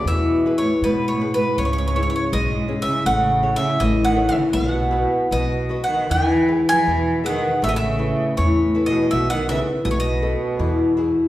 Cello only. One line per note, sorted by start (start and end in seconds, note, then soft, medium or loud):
0.08 0.54 B2 medium
0.60 0.82 A2 medium
0.82 1.06 G#2 medium
1.09 1.32 A2 medium
1.35 1.57 G#2 medium
1.61 2.30 G#2 medium
2.36 2.80 G#2 medium
2.84 3.06 C#3 medium
3.08 3.53 C#3 medium
3.56 3.79 C#3 medium
3.80 4.03 A2 medium
4.06 4.28 D#3 medium
4.30 4.41 C#3 medium
4.57 5.29 B2 medium
5.33 5.81 B2 medium
5.87 6.10 D#3 medium
6.13 6.60 E3 medium
6.70 7.22 E3 medium
7.27 7.61 D#3 medium
7.64 7.70 B2 medium
7.72 7.77 B2 medium
7.77 8.34 C#3 medium
8.39 8.85 A2 medium
8.87 9.10 B2 medium
9.11 9.29 B2 medium
9.32 9.49 D#3 medium
9.49 9.66 C#3 medium
9.84 9.91 B2 medium
9.91 9.98 A2 medium
9.99 11.28 B2 medium